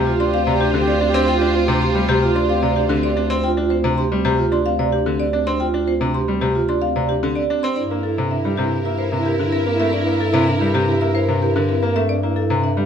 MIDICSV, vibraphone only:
0, 0, Header, 1, 2, 480
1, 0, Start_track
1, 0, Tempo, 540541
1, 1139, Time_signature, 4, 2, 24, 8
1, 11416, End_track
2, 0, Start_track
2, 0, Title_t, "Vibraphone"
2, 0, Program_c, 0, 11
2, 0, Note_on_c, 0, 67, 87
2, 59, Note_on_c, 0, 65, 113
2, 95, Note_off_c, 0, 67, 0
2, 178, Note_on_c, 0, 74, 82
2, 215, Note_off_c, 0, 65, 0
2, 298, Note_on_c, 0, 60, 87
2, 334, Note_off_c, 0, 74, 0
2, 418, Note_on_c, 0, 74, 97
2, 455, Note_off_c, 0, 60, 0
2, 537, Note_on_c, 0, 62, 85
2, 574, Note_off_c, 0, 74, 0
2, 656, Note_on_c, 0, 60, 90
2, 694, Note_off_c, 0, 62, 0
2, 777, Note_on_c, 0, 74, 101
2, 814, Note_off_c, 0, 60, 0
2, 897, Note_on_c, 0, 60, 82
2, 934, Note_off_c, 0, 74, 0
2, 1018, Note_on_c, 0, 62, 88
2, 1054, Note_off_c, 0, 60, 0
2, 1140, Note_on_c, 0, 65, 111
2, 1175, Note_off_c, 0, 62, 0
2, 1247, Note_off_c, 0, 65, 0
2, 1258, Note_on_c, 0, 65, 95
2, 1377, Note_on_c, 0, 60, 87
2, 1414, Note_off_c, 0, 65, 0
2, 1497, Note_on_c, 0, 62, 81
2, 1534, Note_off_c, 0, 60, 0
2, 1617, Note_on_c, 0, 67, 118
2, 1654, Note_off_c, 0, 62, 0
2, 1737, Note_on_c, 0, 60, 89
2, 1774, Note_off_c, 0, 67, 0
2, 1858, Note_on_c, 0, 67, 95
2, 1894, Note_off_c, 0, 60, 0
2, 1974, Note_on_c, 0, 65, 114
2, 2014, Note_off_c, 0, 67, 0
2, 2097, Note_on_c, 0, 74, 88
2, 2133, Note_off_c, 0, 65, 0
2, 2217, Note_on_c, 0, 60, 92
2, 2254, Note_off_c, 0, 74, 0
2, 2337, Note_on_c, 0, 74, 105
2, 2374, Note_off_c, 0, 60, 0
2, 2456, Note_on_c, 0, 62, 73
2, 2494, Note_off_c, 0, 74, 0
2, 2578, Note_on_c, 0, 60, 94
2, 2614, Note_off_c, 0, 62, 0
2, 2697, Note_on_c, 0, 74, 108
2, 2735, Note_off_c, 0, 60, 0
2, 2818, Note_on_c, 0, 60, 88
2, 2854, Note_off_c, 0, 74, 0
2, 2936, Note_on_c, 0, 62, 88
2, 2974, Note_off_c, 0, 60, 0
2, 3055, Note_on_c, 0, 65, 108
2, 3094, Note_off_c, 0, 62, 0
2, 3165, Note_off_c, 0, 65, 0
2, 3175, Note_on_c, 0, 65, 110
2, 3295, Note_on_c, 0, 60, 86
2, 3334, Note_off_c, 0, 65, 0
2, 3415, Note_on_c, 0, 62, 79
2, 3454, Note_off_c, 0, 60, 0
2, 3536, Note_on_c, 0, 67, 109
2, 3574, Note_off_c, 0, 62, 0
2, 3656, Note_on_c, 0, 60, 82
2, 3694, Note_off_c, 0, 67, 0
2, 3776, Note_on_c, 0, 67, 83
2, 3814, Note_off_c, 0, 60, 0
2, 3894, Note_on_c, 0, 65, 106
2, 3934, Note_off_c, 0, 67, 0
2, 4014, Note_on_c, 0, 74, 78
2, 4053, Note_off_c, 0, 65, 0
2, 4134, Note_on_c, 0, 60, 82
2, 4173, Note_off_c, 0, 74, 0
2, 4254, Note_on_c, 0, 74, 101
2, 4293, Note_off_c, 0, 60, 0
2, 4376, Note_on_c, 0, 62, 77
2, 4413, Note_off_c, 0, 74, 0
2, 4495, Note_on_c, 0, 60, 88
2, 4534, Note_off_c, 0, 62, 0
2, 4614, Note_on_c, 0, 74, 105
2, 4653, Note_off_c, 0, 60, 0
2, 4734, Note_on_c, 0, 60, 79
2, 4773, Note_off_c, 0, 74, 0
2, 4854, Note_on_c, 0, 62, 81
2, 4893, Note_off_c, 0, 60, 0
2, 4977, Note_on_c, 0, 65, 99
2, 5013, Note_off_c, 0, 62, 0
2, 5085, Note_off_c, 0, 65, 0
2, 5096, Note_on_c, 0, 65, 102
2, 5216, Note_on_c, 0, 60, 78
2, 5254, Note_off_c, 0, 65, 0
2, 5338, Note_on_c, 0, 62, 84
2, 5374, Note_off_c, 0, 60, 0
2, 5456, Note_on_c, 0, 67, 94
2, 5495, Note_off_c, 0, 62, 0
2, 5575, Note_on_c, 0, 60, 75
2, 5614, Note_off_c, 0, 67, 0
2, 5697, Note_on_c, 0, 67, 81
2, 5733, Note_off_c, 0, 60, 0
2, 5817, Note_on_c, 0, 65, 97
2, 5854, Note_off_c, 0, 67, 0
2, 5938, Note_on_c, 0, 74, 75
2, 5974, Note_off_c, 0, 65, 0
2, 6058, Note_on_c, 0, 60, 83
2, 6095, Note_off_c, 0, 74, 0
2, 6178, Note_on_c, 0, 74, 94
2, 6215, Note_off_c, 0, 60, 0
2, 6298, Note_on_c, 0, 62, 72
2, 6335, Note_off_c, 0, 74, 0
2, 6421, Note_on_c, 0, 60, 88
2, 6455, Note_off_c, 0, 62, 0
2, 6540, Note_on_c, 0, 74, 104
2, 6576, Note_off_c, 0, 60, 0
2, 6660, Note_on_c, 0, 60, 81
2, 6695, Note_off_c, 0, 74, 0
2, 6781, Note_on_c, 0, 62, 74
2, 6815, Note_off_c, 0, 60, 0
2, 6890, Note_off_c, 0, 62, 0
2, 6900, Note_on_c, 0, 62, 72
2, 7018, Note_on_c, 0, 64, 93
2, 7055, Note_off_c, 0, 62, 0
2, 7129, Note_off_c, 0, 64, 0
2, 7139, Note_on_c, 0, 64, 91
2, 7260, Note_on_c, 0, 60, 74
2, 7295, Note_off_c, 0, 64, 0
2, 7380, Note_on_c, 0, 62, 72
2, 7415, Note_off_c, 0, 60, 0
2, 7499, Note_on_c, 0, 67, 83
2, 7535, Note_off_c, 0, 62, 0
2, 7619, Note_on_c, 0, 60, 71
2, 7655, Note_off_c, 0, 67, 0
2, 7739, Note_on_c, 0, 67, 79
2, 7775, Note_off_c, 0, 60, 0
2, 7862, Note_on_c, 0, 64, 89
2, 7895, Note_off_c, 0, 67, 0
2, 7980, Note_on_c, 0, 70, 67
2, 8016, Note_off_c, 0, 64, 0
2, 8100, Note_on_c, 0, 60, 72
2, 8135, Note_off_c, 0, 70, 0
2, 8220, Note_on_c, 0, 70, 86
2, 8255, Note_off_c, 0, 60, 0
2, 8341, Note_on_c, 0, 62, 73
2, 8375, Note_off_c, 0, 70, 0
2, 8462, Note_on_c, 0, 60, 76
2, 8495, Note_off_c, 0, 62, 0
2, 8581, Note_on_c, 0, 70, 85
2, 8616, Note_off_c, 0, 60, 0
2, 8699, Note_on_c, 0, 60, 74
2, 8736, Note_off_c, 0, 70, 0
2, 8821, Note_on_c, 0, 62, 78
2, 8855, Note_off_c, 0, 60, 0
2, 8940, Note_on_c, 0, 64, 96
2, 8975, Note_off_c, 0, 62, 0
2, 9048, Note_off_c, 0, 64, 0
2, 9059, Note_on_c, 0, 64, 101
2, 9181, Note_on_c, 0, 60, 84
2, 9215, Note_off_c, 0, 64, 0
2, 9301, Note_on_c, 0, 62, 84
2, 9336, Note_off_c, 0, 60, 0
2, 9421, Note_on_c, 0, 67, 91
2, 9456, Note_off_c, 0, 62, 0
2, 9540, Note_on_c, 0, 60, 88
2, 9575, Note_off_c, 0, 67, 0
2, 9661, Note_on_c, 0, 67, 87
2, 9695, Note_off_c, 0, 60, 0
2, 9781, Note_on_c, 0, 64, 98
2, 9816, Note_off_c, 0, 67, 0
2, 9900, Note_on_c, 0, 70, 77
2, 9936, Note_off_c, 0, 64, 0
2, 10022, Note_on_c, 0, 60, 80
2, 10055, Note_off_c, 0, 70, 0
2, 10143, Note_on_c, 0, 70, 96
2, 10176, Note_off_c, 0, 60, 0
2, 10263, Note_on_c, 0, 62, 89
2, 10296, Note_off_c, 0, 70, 0
2, 10383, Note_on_c, 0, 60, 89
2, 10416, Note_off_c, 0, 62, 0
2, 10503, Note_on_c, 0, 70, 99
2, 10536, Note_off_c, 0, 60, 0
2, 10622, Note_on_c, 0, 60, 82
2, 10656, Note_off_c, 0, 70, 0
2, 10742, Note_on_c, 0, 62, 78
2, 10776, Note_off_c, 0, 60, 0
2, 10863, Note_on_c, 0, 64, 98
2, 10896, Note_off_c, 0, 62, 0
2, 10969, Note_off_c, 0, 64, 0
2, 10980, Note_on_c, 0, 64, 101
2, 11100, Note_on_c, 0, 60, 81
2, 11135, Note_off_c, 0, 64, 0
2, 11220, Note_on_c, 0, 62, 82
2, 11255, Note_off_c, 0, 60, 0
2, 11340, Note_on_c, 0, 67, 93
2, 11375, Note_off_c, 0, 62, 0
2, 11416, Note_off_c, 0, 67, 0
2, 11416, End_track
0, 0, End_of_file